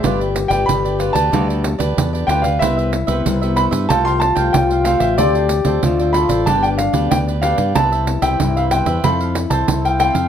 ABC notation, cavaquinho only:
X:1
M:4/4
L:1/16
Q:1/4=93
K:C
V:1 name="Cavaquinho"
[FGBd] [GBd] z [GBd]2 [GBd] [FGBd] [GBd] [FGBd] [GBd] z [GBd]2 [GBd] [FGBd] [GBd] | [EBce] [Bce] z [Bce]2 [Bce] [EBce] [Bce] [Acfg] [cfg] z [cfg]2 [cfg] [Acfg] [cfg] | [FAcd] [Acd] z [Acd]2 [Acd] [FAcd] [Acd] [DGBd] [GBd] z [GBd]2 [GBd] [DGBd] [GBd] | [EBce] [Bce] z [Bce]2 [Bce] [EBce] [Bce] [EAcf] [Acf] z [Ac]2 [Acf] [EAcf] [Acf] |]